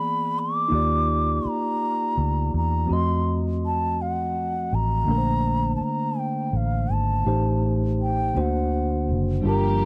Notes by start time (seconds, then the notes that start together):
Already playing: E3 A#3 B3 G#4 D5 B5
0.39 D6
0.68 D#2 A#3 D#4 F4
0.74 G4 D5
1.45 A#5, muted fingered electric bass stroke
2.18 D2
2.54 E2 A#5
2.86 F3 C4 F#4
2.90 F2 A3 D#5 C6
3.66 A5
4.02 F#5
4.73 A1 A#5
5.04 A#1 D3 A#3 D4
5.09 A3 A#4
5.18 C5
5.76 A5
5.80 A#5, muted fingered electric bass stroke
6.19 G5
6.53 A1 F5
6.90 G#1 A5
7.24 A1 A2 A3 D#4 G4 C5
8.02 G5
8.34 D2 D3 A#3 D4 F#4 C5 G5
8.41 F#5
9.09 F#1
9.42 G1 F3 G3 A#3 D4 F4 G4
9.47 G4 A#4 A#5